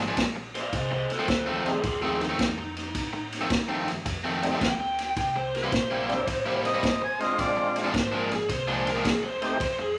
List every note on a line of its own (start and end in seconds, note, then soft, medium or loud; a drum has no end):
0.00 0.16 G#1 medium
0.00 snare soft
0.08 0.23 A#2 medium
0.08 0.23 F3 medium
0.08 0.23 G#3 medium
0.08 0.23 D4 medium
0.17 0.71 A#1 medium
0.17 kick medium
0.17 snare loud
0.17 ride medium
0.35 muted overdriven electric guitar stroke soft
0.55 0.74 D5 medium
0.55 0.75 F5 medium
0.55 snare soft
0.55 ride medium
0.73 1.07 C2 medium
0.73 0.92 C5 loud
0.73 0.92 D#5 medium
0.73 kick medium
0.73 snare soft
0.73 ride medium
0.91 1.11 C5 medium
0.91 1.12 D#5 medium
0.91 muted overdriven electric guitar stroke soft
1.10 1.28 A4 medium
1.10 1.28 C5 medium
1.10 muted upright bass stroke soft
1.10 snare soft
1.10 ride medium
1.19 1.27 F2 medium
1.19 1.27 D#3 medium
1.19 1.28 A3 medium
1.19 1.28 C4 loud
1.28 1.82 D2 medium
1.28 1.46 A4 medium
1.28 1.47 C5 medium
1.28 muted overdriven electric guitar stroke medium
1.28 kick medium
1.28 snare loud
1.28 ride medium
1.46 1.69 F2 medium
1.46 1.69 D#3 medium
1.46 1.68 A3 medium
1.46 1.68 C4 medium
1.46 1.65 A4 medium
1.46 1.66 C5 medium
1.65 1.82 G3 medium
1.65 1.82 A3 medium
1.65 1.82 C4 medium
1.65 1.82 D#4 medium
1.65 1.83 F4 medium
1.65 1.83 G#4 medium
1.65 snare soft
1.65 ride medium
1.83 2.37 D#2 medium
1.83 2.01 F4 medium
1.83 2.02 G#4 medium
1.83 muted overdriven electric guitar stroke soft
1.83 kick medium
1.83 snare soft
1.83 ride medium
2.02 2.24 F2 medium
2.02 2.24 D#3 medium
2.02 2.24 A3 medium
2.02 2.24 C4 medium
2.02 2.20 F4 medium
2.02 2.21 G#4 medium
2.21 3.84 D#4 medium
2.21 snare soft
2.21 ride medium
2.29 2.45 F2 medium
2.29 2.45 D#3 medium
2.29 2.45 A3 medium
2.29 2.44 C4 medium
2.39 2.93 F2 medium
2.39 kick medium
2.39 snare loud
2.39 ride medium
2.58 muted overdriven electric guitar stroke soft
2.77 snare soft
2.77 ride medium
2.95 3.49 A2 medium
2.95 kick medium
2.95 snare soft
2.95 ride medium
3.13 muted overdriven electric guitar stroke soft
3.32 snare soft
3.32 ride medium
3.41 3.49 F2 medium
3.41 3.49 D#3 medium
3.41 3.49 A3 medium
3.41 3.49 C4 loud
3.50 4.04 G2 medium
3.50 muted overdriven electric guitar stroke soft
3.50 kick medium
3.50 snare loud
3.50 ride medium
3.68 3.91 F2 medium
3.68 3.91 D#3 medium
3.68 3.90 A3 medium
3.68 3.90 C4 medium
3.88 snare soft
3.88 ride medium
4.05 4.59 F2 medium
4.05 muted overdriven electric guitar stroke soft
4.05 kick medium
4.05 snare soft
4.05 ride medium
4.24 4.46 F2 medium
4.24 4.46 D#3 medium
4.24 4.46 A3 medium
4.24 4.45 C4 medium
4.42 4.59 G3 medium
4.42 4.59 A3 medium
4.42 4.60 C4 medium
4.42 4.60 D#4 medium
4.42 snare soft
4.42 ride medium
4.52 4.67 F2 medium
4.52 4.67 D#3 medium
4.52 4.67 A3 medium
4.52 4.67 C4 medium
4.61 5.15 D2 medium
4.61 5.16 G5 loud
4.61 kick medium
4.61 snare loud
4.61 ride medium
4.80 muted overdriven electric guitar stroke soft
4.99 snare soft
4.99 ride medium
5.16 5.70 C2 medium
5.16 5.35 G5 medium
5.16 kick medium
5.16 snare soft
5.16 ride medium
5.36 5.54 C5 loud
5.36 muted overdriven electric guitar stroke soft
5.55 7.17 C5 medium
5.55 snare soft
5.55 ride medium
5.63 5.71 C3 medium
5.63 5.71 G3 medium
5.63 5.72 A#3 medium
5.63 5.72 E4 loud
5.72 6.26 A#1 loud
5.72 muted overdriven electric guitar stroke soft
5.72 kick medium
5.72 snare loud
5.72 ride medium
5.91 6.13 C3 medium
5.91 6.12 G3 medium
5.91 6.12 A#3 medium
5.91 6.12 E4 medium
6.08 6.25 G3 medium
6.08 6.25 A#3 medium
6.08 6.26 D4 medium
6.08 6.26 E4 medium
6.08 snare soft
6.08 ride soft
6.27 6.81 A1 medium
6.27 muted overdriven electric guitar stroke soft
6.27 kick medium
6.27 snare soft
6.27 ride medium
6.46 6.68 C3 medium
6.46 6.68 G3 medium
6.46 6.67 A#3 medium
6.46 6.67 E4 medium
6.65 7.01 D#5 medium
6.65 snare soft
6.65 ride medium
6.74 6.89 C3 medium
6.74 6.89 G3 medium
6.74 6.89 A#3 medium
6.74 6.88 E4 medium
6.83 7.37 G1 medium
6.83 kick medium
6.83 snare loud
6.83 ride medium
7.02 7.20 G#5 medium
7.02 muted overdriven electric guitar stroke soft
7.19 7.89 G#3 medium
7.19 7.90 C4 medium
7.19 7.90 D4 medium
7.19 7.90 F4 medium
7.19 7.38 D#5 medium
7.19 snare soft
7.19 ride medium
7.38 7.92 A#1 medium
7.38 7.75 D5 loud
7.38 kick medium
7.38 snare soft
7.38 ride medium
7.57 muted overdriven electric guitar stroke medium
7.76 snare soft
7.76 ride medium
7.84 7.92 A#2 medium
7.84 7.93 F3 medium
7.84 7.93 G#3 medium
7.84 7.93 D4 loud
7.93 8.47 G#1 medium
7.93 8.12 C5 medium
7.93 muted overdriven electric guitar stroke soft
7.93 kick medium
7.93 snare loud
7.93 ride medium
8.12 8.34 A#2 medium
8.12 8.34 F3 medium
8.12 8.34 G#3 medium
8.12 8.33 D4 medium
8.12 8.31 A#4 medium
8.31 8.49 G#4 medium
8.31 snare soft
8.31 ride medium
8.49 9.03 C2 medium
8.49 8.68 C5 medium
8.49 muted overdriven electric guitar stroke soft
8.49 kick medium
8.49 snare soft
8.49 ride medium
8.68 8.89 A#2 medium
8.68 8.89 F3 medium
8.68 8.89 G#3 medium
8.68 8.89 D4 medium
8.68 8.86 C5 medium
8.87 9.05 A#4 medium
8.87 snare soft
8.87 ride medium
8.95 9.10 A#2 medium
8.95 9.10 F3 medium
8.95 9.10 G#3 medium
8.95 9.10 D4 medium
9.04 9.58 D2 medium
9.04 9.23 G#4 medium
9.04 kick medium
9.04 snare loud
9.04 ride medium
9.23 9.42 C5 medium
9.23 muted overdriven electric guitar stroke soft
9.41 9.58 A3 medium
9.41 9.58 C4 medium
9.41 9.58 D#4 medium
9.41 9.58 G4 loud
9.41 9.61 C5 medium
9.41 snare soft
9.41 ride medium
9.60 9.98 F2 medium
9.60 9.79 C5 medium
9.60 kick medium
9.60 snare soft
9.60 ride medium
9.79 9.97 G#4 medium
9.79 muted overdriven electric guitar stroke soft